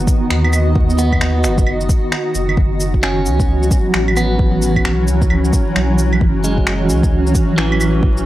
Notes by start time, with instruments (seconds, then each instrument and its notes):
Already playing: ambient pad D#3 B3 F#4 D#5
0.07 kick, cabasa, shaker
0.30 sub bass D#2, finger snap
0.44 claves
0.53 cabasa, claves, shaker
0.75 kick
0.90 shaker
0.98 clean electric guitar B3, cabasa, shaker
1.12 kick, claves
1.21 sub bass D#2, finger snap
1.44 sub bass F#1, finger snap, cabasa, shaker
1.58 kick, shaker
1.67 claves
1.81 shaker
1.89 kick, cabasa, shaker
2.12 finger snap
2.35 sub bass F#1, cabasa, shaker
2.49 claves
2.57 sub bass F#1, ambient pad E3, kick
2.64 ambient pad F#3 C#4
2.80 cabasa, shaker
2.94 ambient pad C#5, kick
3.03 clean electric guitar C#4, finger snap
3.26 sub bass C#2, cabasa, shaker
3.40 kick, shaker
3.63 shaker
3.71 kick, cabasa, shaker
3.94 sub bass A1, finger snap
4.08 claves
4.17 clean electric guitar B3, cabasa, claves, shaker
4.39 kick
4.62 cabasa, shaker
4.76 kick, claves
4.85 sub bass B1, finger snap
5.07 sub bass C#2, cabasa, shaker
5.22 kick, shaker
5.30 claves
5.45 shaker
5.53 kick, cabasa, shaker
5.76 sub bass B1, finger snap
5.98 cabasa, shaker
6.13 claves
6.21 sub bass F#1, kick
6.44 clean electric guitar G#3, cabasa, shaker
6.58 kick
6.67 finger snap
6.90 sub bass C#2, cabasa, shaker
7.03 kick, shaker
7.27 shaker
7.35 kick, cabasa, shaker
7.58 sub bass A1, clean electric guitar E3, finger snap
7.72 claves
7.81 cabasa, claves, shaker
8.03 kick
8.17 shaker